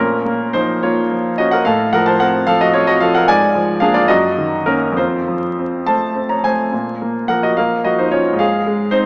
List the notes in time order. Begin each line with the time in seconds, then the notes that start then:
Already playing: A#2 C#4 A#4
0.25 A#3
0.53 F3 D#4 C5
0.83 A#3 F4 C#5
1.11 F3
1.38 C#4 F#4 D#5
1.51 A#4 F#5
1.65 A2 A4 F5
1.93 F3 A#4 F#5
2.06 C5 A5
2.20 C4 A#4 F#5
2.47 F3 A4 F5
2.61 F#4 D#5
2.74 C4 F4 C#5
2.87 F#4 D#5
3.01 F3 A4 F5
3.15 A#4 F#5
3.28 G#2 D5 G#5
3.55 F3
3.80 A#3 D4 G#4 F5
3.94 F4 D5
4.08 F#2 F#4 D#5
4.38 D#3
4.66 A#3 C#4 D#4 A#4
4.92 F2
4.97 F4 C5
5.28 F3
5.59 C4
5.86 A3 C5 A5
6.15 C4
6.29 C#5 A#5
6.44 A3 C5 G#5
6.72 A#2
7.01 A#3
7.28 F3 A#4 F#5
7.43 F#4 D#5
7.57 A#3 A#4 F5
7.84 F3 F#4 D#5
7.98 D#4 C5
8.11 C#4 F4 C#5
8.33 G#2
8.39 G#4 F5
8.66 G#3
8.91 C4 D#4 C5